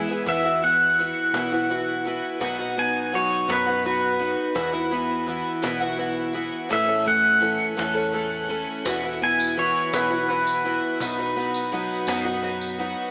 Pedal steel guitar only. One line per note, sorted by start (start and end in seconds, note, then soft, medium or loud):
0.29 0.62 E5 medium
0.64 2.74 F#5 medium
2.79 3.13 G#5 medium
3.15 3.49 C#5 medium
3.52 3.85 B4 medium
3.86 5.82 B4 medium
6.73 7.06 E5 medium
7.08 9.18 F#5 medium
9.24 9.57 G#5 medium
9.59 9.93 C#5 medium
9.94 10.28 B4 medium
10.29 12.25 B4 medium